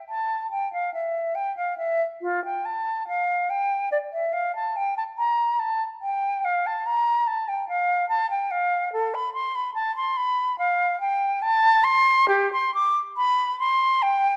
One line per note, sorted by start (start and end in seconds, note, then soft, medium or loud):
0.09 0.50 A5 medium
0.51 0.71 G5 medium
0.73 0.93 F5 medium
0.94 1.36 E5 medium
1.35 1.56 G5 medium
1.57 1.77 F5 medium
1.78 2.02 E5 medium
2.22 2.43 F4 medium
2.45 2.67 G5 medium
2.65 3.07 A5 medium
3.08 3.51 F5 medium
3.50 3.91 G5 medium
3.92 3.98 D5 medium
4.13 4.34 E5 medium
4.33 4.55 F5 medium
4.55 4.78 A5 medium
4.76 4.96 G5 medium
4.97 5.03 A5 medium
5.18 5.61 A#5 medium
5.59 5.82 A5 medium
6.01 6.46 G5 medium
6.44 6.68 F5 medium
6.66 6.87 A5 medium
6.86 7.29 A#5 medium
7.27 7.50 A5 medium
7.48 7.68 G5 medium
7.68 8.08 F5 medium
8.09 8.29 A5 medium
8.30 8.52 G5 medium
8.51 8.92 F5 medium
8.92 9.16 A4 medium
9.14 9.33 B5 medium
9.33 9.57 C6 medium
9.55 9.74 B5 medium
9.74 9.94 A5 medium
9.96 10.18 C6 medium
10.17 10.58 B5 medium
10.58 10.99 F5 medium
11.00 11.43 G5 medium
11.42 11.85 A5 loud
11.84 12.28 C6 loud
12.28 12.51 G4 medium
12.53 12.74 C6 medium
12.74 12.98 D6 loud
13.17 13.59 B5 loud
13.60 14.04 C6 medium
14.02 14.37 G5 loud